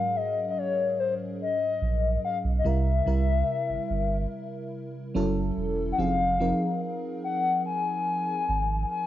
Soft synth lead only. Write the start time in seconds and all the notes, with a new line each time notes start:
Already playing: F5
0.16 D#5
0.50 D#5
0.58 C#5
1.00 C5
1.42 D#5
2.25 F5
2.59 D#5
2.67 E5
5.92 F#5
5.99 F5
7.24 F#5
7.66 G#5
8.91 G#5